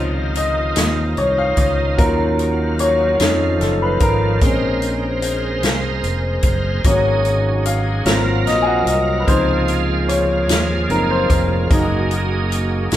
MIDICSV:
0, 0, Header, 1, 6, 480
1, 0, Start_track
1, 0, Key_signature, -5, "major"
1, 0, Tempo, 810811
1, 1171, Time_signature, 6, 3, 24, 8
1, 7676, End_track
2, 0, Start_track
2, 0, Title_t, "Grand piano"
2, 0, Program_c, 0, 0
2, 0, Control_c, 0, 64, 127
2, 0, Note_on_c, 0, 48, 42
2, 0, Note_on_c, 0, 53, 45
2, 0, Note_on_c, 0, 63, 51
2, 0, Note_on_c, 0, 72, 74
2, 218, Note_on_c, 0, 75, 74
2, 231, Note_off_c, 0, 72, 0
2, 698, Note_on_c, 0, 73, 83
2, 709, Note_off_c, 0, 75, 0
2, 818, Note_off_c, 0, 73, 0
2, 819, Note_on_c, 0, 77, 88
2, 927, Note_off_c, 0, 77, 0
2, 933, Note_on_c, 0, 73, 77
2, 987, Note_off_c, 0, 73, 0
2, 1147, Note_off_c, 0, 53, 0
2, 1149, Note_off_c, 0, 48, 0
2, 1152, Note_off_c, 0, 63, 0
2, 1168, Note_on_c, 0, 54, 49
2, 1171, Note_on_c, 0, 61, 46
2, 1176, Note_on_c, 0, 70, 83
2, 1177, Note_on_c, 0, 65, 54
2, 1178, Control_c, 0, 64, 0
2, 1273, Control_c, 0, 64, 127
2, 1658, Note_on_c, 0, 73, 97
2, 1668, Note_off_c, 0, 70, 0
2, 1866, Note_off_c, 0, 54, 0
2, 1867, Note_off_c, 0, 61, 0
2, 1871, Note_off_c, 0, 65, 0
2, 1896, Note_on_c, 0, 69, 46
2, 1898, Control_c, 0, 64, 0
2, 1901, Note_on_c, 0, 61, 47
2, 1904, Note_on_c, 0, 63, 46
2, 1998, Control_c, 0, 64, 127
2, 2111, Note_off_c, 0, 73, 0
2, 2128, Note_off_c, 0, 69, 0
2, 2137, Note_on_c, 0, 69, 73
2, 2257, Note_off_c, 0, 69, 0
2, 2263, Note_on_c, 0, 71, 78
2, 2293, Note_off_c, 0, 71, 0
2, 2380, Note_on_c, 0, 70, 89
2, 2592, Note_off_c, 0, 61, 0
2, 2594, Note_off_c, 0, 63, 0
2, 2618, Note_on_c, 0, 56, 46
2, 2618, Note_on_c, 0, 60, 44
2, 2620, Control_c, 0, 64, 0
2, 2624, Note_on_c, 0, 61, 54
2, 2721, Control_c, 0, 64, 127
2, 2934, Note_off_c, 0, 56, 0
2, 2934, Note_off_c, 0, 60, 0
2, 2937, Note_off_c, 0, 61, 0
2, 3552, Note_off_c, 0, 70, 0
2, 4058, Note_on_c, 0, 54, 54
2, 4059, Control_c, 0, 64, 0
2, 4060, Note_on_c, 0, 73, 74
2, 4061, Note_on_c, 0, 58, 48
2, 4065, Note_on_c, 0, 61, 50
2, 4165, Control_c, 0, 64, 127
2, 4512, Note_off_c, 0, 73, 0
2, 4533, Note_on_c, 0, 77, 84
2, 4751, Note_off_c, 0, 54, 0
2, 4752, Note_off_c, 0, 58, 0
2, 4754, Note_off_c, 0, 61, 0
2, 4772, Note_on_c, 0, 54, 52
2, 4773, Note_on_c, 0, 58, 38
2, 4778, Note_on_c, 0, 65, 53
2, 4779, Control_c, 0, 64, 0
2, 4779, Note_on_c, 0, 60, 44
2, 4898, Control_c, 0, 64, 127
2, 4988, Note_off_c, 0, 77, 0
2, 5015, Note_on_c, 0, 75, 87
2, 5105, Note_off_c, 0, 75, 0
2, 5105, Note_on_c, 0, 80, 63
2, 5132, Note_on_c, 0, 78, 78
2, 5133, Note_off_c, 0, 80, 0
2, 5255, Note_off_c, 0, 78, 0
2, 5257, Note_on_c, 0, 75, 78
2, 5447, Note_on_c, 0, 71, 56
2, 5458, Note_off_c, 0, 75, 0
2, 5467, Note_off_c, 0, 54, 0
2, 5467, Note_off_c, 0, 58, 0
2, 5470, Note_off_c, 0, 65, 0
2, 5471, Note_off_c, 0, 60, 0
2, 5489, Note_off_c, 0, 71, 0
2, 5490, Note_on_c, 0, 53, 53
2, 5491, Note_on_c, 0, 48, 45
2, 5496, Note_on_c, 0, 72, 85
2, 5497, Control_c, 0, 64, 0
2, 5497, Note_on_c, 0, 63, 52
2, 5590, Control_c, 0, 64, 127
2, 5971, Note_on_c, 0, 73, 78
2, 5987, Note_off_c, 0, 72, 0
2, 6186, Note_off_c, 0, 53, 0
2, 6187, Note_off_c, 0, 48, 0
2, 6189, Note_off_c, 0, 63, 0
2, 6426, Note_off_c, 0, 73, 0
2, 6449, Note_on_c, 0, 53, 43
2, 6451, Note_on_c, 0, 63, 45
2, 6453, Note_on_c, 0, 60, 40
2, 6457, Note_on_c, 0, 70, 76
2, 6574, Note_on_c, 0, 72, 78
2, 6577, Note_off_c, 0, 70, 0
2, 6665, Note_off_c, 0, 53, 0
2, 6666, Note_off_c, 0, 63, 0
2, 6667, Note_off_c, 0, 60, 0
2, 6695, Note_off_c, 0, 72, 0
2, 6699, Note_on_c, 0, 70, 66
2, 6929, Note_on_c, 0, 56, 50
2, 6929, Note_on_c, 0, 58, 49
2, 6935, Note_on_c, 0, 63, 59
2, 6936, Control_c, 0, 64, 0
2, 7046, Control_c, 0, 64, 127
2, 7625, Note_off_c, 0, 56, 0
2, 7625, Note_off_c, 0, 58, 0
2, 7628, Note_off_c, 0, 63, 0
2, 7676, Note_off_c, 0, 70, 0
2, 7676, End_track
3, 0, Start_track
3, 0, Title_t, "Tonewheel organ"
3, 0, Program_c, 1, 16
3, 0, Note_on_c, 1, 51, 55
3, 0, Note_on_c, 1, 63, 56
3, 0, Note_on_c, 1, 65, 67
3, 1157, Note_off_c, 1, 63, 0
3, 1166, Note_on_c, 1, 54, 57
3, 1867, Note_off_c, 1, 51, 0
3, 1869, Note_off_c, 1, 65, 0
3, 1881, Note_off_c, 1, 54, 0
3, 1891, Note_on_c, 1, 53, 55
3, 1894, Note_on_c, 1, 65, 63
3, 1895, Note_on_c, 1, 51, 55
3, 2604, Note_off_c, 1, 53, 0
3, 2605, Note_off_c, 1, 65, 0
3, 2606, Note_off_c, 1, 51, 0
3, 2612, Note_on_c, 1, 70, 67
3, 2615, Note_on_c, 1, 72, 53
3, 2618, Note_on_c, 1, 56, 60
3, 4037, Note_off_c, 1, 70, 0
3, 4038, Note_off_c, 1, 72, 0
3, 4040, Note_off_c, 1, 56, 0
3, 4048, Note_on_c, 1, 68, 67
3, 4051, Note_on_c, 1, 54, 55
3, 4054, Note_on_c, 1, 63, 57
3, 4762, Note_off_c, 1, 68, 0
3, 4765, Note_off_c, 1, 63, 0
3, 4769, Note_on_c, 1, 58, 57
3, 4772, Note_on_c, 1, 70, 68
3, 4773, Note_on_c, 1, 65, 49
3, 5476, Note_off_c, 1, 54, 0
3, 5484, Note_off_c, 1, 65, 0
3, 5484, Note_off_c, 1, 70, 0
3, 5487, Note_on_c, 1, 68, 69
3, 5489, Note_on_c, 1, 53, 57
3, 5491, Note_on_c, 1, 65, 51
3, 6906, Note_off_c, 1, 58, 0
3, 6914, Note_off_c, 1, 53, 0
3, 6915, Note_off_c, 1, 65, 0
3, 6927, Note_on_c, 1, 58, 59
3, 6929, Note_on_c, 1, 54, 60
3, 6929, Note_on_c, 1, 63, 56
3, 7676, Note_off_c, 1, 54, 0
3, 7676, Note_off_c, 1, 58, 0
3, 7676, Note_off_c, 1, 63, 0
3, 7676, Note_off_c, 1, 68, 0
3, 7676, End_track
4, 0, Start_track
4, 0, Title_t, "French horn section"
4, 0, Program_c, 2, 60
4, 0, Note_on_c, 2, 53, 58
4, 0, Note_on_c, 2, 56, 54
4, 0, Note_on_c, 2, 63, 59
4, 1158, Note_off_c, 2, 56, 0
4, 1160, Note_off_c, 2, 53, 0
4, 1177, Note_on_c, 2, 54, 61
4, 1179, Note_on_c, 2, 65, 70
4, 1887, Note_off_c, 2, 54, 0
4, 1895, Note_on_c, 2, 53, 69
4, 2589, Note_off_c, 2, 63, 0
4, 2601, Note_off_c, 2, 65, 0
4, 2606, Note_off_c, 2, 53, 0
4, 2609, Note_on_c, 2, 58, 68
4, 2610, Note_on_c, 2, 68, 72
4, 2612, Note_on_c, 2, 72, 61
4, 4035, Note_off_c, 2, 58, 0
4, 4036, Note_off_c, 2, 68, 0
4, 4037, Note_off_c, 2, 72, 0
4, 4052, Note_on_c, 2, 63, 58
4, 4057, Note_on_c, 2, 56, 62
4, 4058, Note_on_c, 2, 61, 54
4, 4060, Note_on_c, 2, 66, 66
4, 4764, Note_off_c, 2, 63, 0
4, 4766, Note_off_c, 2, 56, 0
4, 4767, Note_off_c, 2, 61, 0
4, 4768, Note_off_c, 2, 66, 0
4, 4772, Note_on_c, 2, 54, 59
4, 4773, Note_on_c, 2, 65, 67
4, 4777, Note_on_c, 2, 63, 57
4, 4778, Note_on_c, 2, 58, 54
4, 5484, Note_off_c, 2, 54, 0
4, 5487, Note_off_c, 2, 58, 0
4, 5493, Note_on_c, 2, 56, 67
4, 6909, Note_off_c, 2, 65, 0
4, 6911, Note_off_c, 2, 63, 0
4, 6916, Note_off_c, 2, 56, 0
4, 6933, Note_on_c, 2, 58, 58
4, 6933, Note_on_c, 2, 63, 53
4, 6936, Note_on_c, 2, 56, 65
4, 6941, Note_on_c, 2, 66, 68
4, 7676, Note_off_c, 2, 56, 0
4, 7676, Note_off_c, 2, 58, 0
4, 7676, Note_off_c, 2, 63, 0
4, 7676, Note_off_c, 2, 66, 0
4, 7676, End_track
5, 0, Start_track
5, 0, Title_t, "Fingered electric bass"
5, 0, Program_c, 3, 33
5, 0, Note_on_c, 3, 37, 81
5, 427, Note_off_c, 3, 37, 0
5, 456, Note_on_c, 3, 39, 82
5, 674, Note_off_c, 3, 39, 0
5, 698, Note_on_c, 3, 36, 67
5, 915, Note_off_c, 3, 36, 0
5, 933, Note_on_c, 3, 37, 77
5, 1153, Note_off_c, 3, 37, 0
5, 1177, Note_on_c, 3, 39, 93
5, 1870, Note_off_c, 3, 39, 0
5, 1894, Note_on_c, 3, 41, 80
5, 2113, Note_off_c, 3, 41, 0
5, 2134, Note_on_c, 3, 30, 80
5, 2354, Note_off_c, 3, 30, 0
5, 2373, Note_on_c, 3, 32, 83
5, 2593, Note_off_c, 3, 32, 0
5, 2616, Note_on_c, 3, 34, 92
5, 3334, Note_off_c, 3, 34, 0
5, 3334, Note_on_c, 3, 36, 78
5, 3553, Note_off_c, 3, 36, 0
5, 3572, Note_on_c, 3, 29, 72
5, 3792, Note_off_c, 3, 29, 0
5, 3808, Note_on_c, 3, 30, 85
5, 4030, Note_off_c, 3, 30, 0
5, 4052, Note_on_c, 3, 32, 70
5, 4748, Note_off_c, 3, 32, 0
5, 4769, Note_on_c, 3, 32, 79
5, 4990, Note_off_c, 3, 32, 0
5, 5008, Note_on_c, 3, 34, 75
5, 5230, Note_off_c, 3, 34, 0
5, 5247, Note_on_c, 3, 36, 80
5, 5469, Note_off_c, 3, 36, 0
5, 5493, Note_on_c, 3, 37, 80
5, 6210, Note_off_c, 3, 37, 0
5, 6210, Note_on_c, 3, 39, 81
5, 6430, Note_off_c, 3, 39, 0
5, 6450, Note_on_c, 3, 30, 67
5, 6670, Note_off_c, 3, 30, 0
5, 6690, Note_on_c, 3, 29, 78
5, 6910, Note_off_c, 3, 29, 0
5, 6931, Note_on_c, 3, 30, 86
5, 7626, Note_off_c, 3, 30, 0
5, 7650, Note_on_c, 3, 32, 78
5, 7676, Note_off_c, 3, 32, 0
5, 7676, End_track
6, 0, Start_track
6, 0, Title_t, "Drums"
6, 210, Note_on_c, 9, 42, 63
6, 269, Note_off_c, 9, 42, 0
6, 448, Note_on_c, 9, 42, 86
6, 454, Note_on_c, 9, 38, 90
6, 507, Note_off_c, 9, 42, 0
6, 513, Note_off_c, 9, 38, 0
6, 693, Note_on_c, 9, 42, 37
6, 752, Note_off_c, 9, 42, 0
6, 928, Note_on_c, 9, 42, 56
6, 931, Note_on_c, 9, 36, 75
6, 987, Note_off_c, 9, 42, 0
6, 990, Note_off_c, 9, 36, 0
6, 1175, Note_on_c, 9, 36, 98
6, 1175, Note_on_c, 9, 42, 66
6, 1234, Note_off_c, 9, 36, 0
6, 1234, Note_off_c, 9, 42, 0
6, 1415, Note_on_c, 9, 42, 41
6, 1474, Note_off_c, 9, 42, 0
6, 1652, Note_on_c, 9, 42, 62
6, 1711, Note_off_c, 9, 42, 0
6, 1892, Note_on_c, 9, 42, 77
6, 1898, Note_on_c, 9, 38, 92
6, 1951, Note_off_c, 9, 42, 0
6, 1957, Note_off_c, 9, 38, 0
6, 2136, Note_on_c, 9, 42, 40
6, 2141, Note_on_c, 9, 38, 26
6, 2196, Note_off_c, 9, 42, 0
6, 2200, Note_off_c, 9, 38, 0
6, 2370, Note_on_c, 9, 42, 57
6, 2372, Note_on_c, 9, 36, 85
6, 2429, Note_off_c, 9, 42, 0
6, 2431, Note_off_c, 9, 36, 0
6, 2612, Note_on_c, 9, 42, 66
6, 2614, Note_on_c, 9, 36, 93
6, 2672, Note_off_c, 9, 42, 0
6, 2673, Note_off_c, 9, 36, 0
6, 2853, Note_on_c, 9, 42, 41
6, 2912, Note_off_c, 9, 42, 0
6, 3092, Note_on_c, 9, 42, 70
6, 3151, Note_off_c, 9, 42, 0
6, 3333, Note_on_c, 9, 42, 72
6, 3338, Note_on_c, 9, 38, 88
6, 3392, Note_off_c, 9, 42, 0
6, 3398, Note_off_c, 9, 38, 0
6, 3574, Note_on_c, 9, 42, 39
6, 3633, Note_off_c, 9, 42, 0
6, 3804, Note_on_c, 9, 42, 58
6, 3808, Note_on_c, 9, 36, 84
6, 3863, Note_off_c, 9, 42, 0
6, 3868, Note_off_c, 9, 36, 0
6, 4051, Note_on_c, 9, 42, 71
6, 4052, Note_on_c, 9, 36, 93
6, 4110, Note_off_c, 9, 42, 0
6, 4112, Note_off_c, 9, 36, 0
6, 4291, Note_on_c, 9, 42, 40
6, 4350, Note_off_c, 9, 42, 0
6, 4532, Note_on_c, 9, 42, 68
6, 4591, Note_off_c, 9, 42, 0
6, 4769, Note_on_c, 9, 42, 71
6, 4775, Note_on_c, 9, 38, 98
6, 4829, Note_off_c, 9, 42, 0
6, 4834, Note_off_c, 9, 38, 0
6, 5014, Note_on_c, 9, 42, 41
6, 5018, Note_on_c, 9, 38, 29
6, 5073, Note_off_c, 9, 42, 0
6, 5077, Note_off_c, 9, 38, 0
6, 5250, Note_on_c, 9, 42, 57
6, 5310, Note_off_c, 9, 42, 0
6, 5492, Note_on_c, 9, 36, 85
6, 5492, Note_on_c, 9, 42, 65
6, 5551, Note_off_c, 9, 36, 0
6, 5551, Note_off_c, 9, 42, 0
6, 5731, Note_on_c, 9, 42, 43
6, 5790, Note_off_c, 9, 42, 0
6, 5975, Note_on_c, 9, 42, 73
6, 6034, Note_off_c, 9, 42, 0
6, 6211, Note_on_c, 9, 42, 88
6, 6216, Note_on_c, 9, 38, 100
6, 6270, Note_off_c, 9, 42, 0
6, 6276, Note_off_c, 9, 38, 0
6, 6452, Note_on_c, 9, 42, 42
6, 6512, Note_off_c, 9, 42, 0
6, 6688, Note_on_c, 9, 36, 77
6, 6689, Note_on_c, 9, 42, 64
6, 6748, Note_off_c, 9, 36, 0
6, 6749, Note_off_c, 9, 42, 0
6, 6929, Note_on_c, 9, 42, 66
6, 6930, Note_on_c, 9, 36, 96
6, 6988, Note_off_c, 9, 42, 0
6, 6989, Note_off_c, 9, 36, 0
6, 7169, Note_on_c, 9, 42, 42
6, 7228, Note_off_c, 9, 42, 0
6, 7411, Note_on_c, 9, 42, 63
6, 7471, Note_off_c, 9, 42, 0
6, 7646, Note_on_c, 9, 42, 80
6, 7651, Note_on_c, 9, 38, 88
6, 7676, Note_off_c, 9, 38, 0
6, 7676, Note_off_c, 9, 42, 0
6, 7676, End_track
0, 0, End_of_file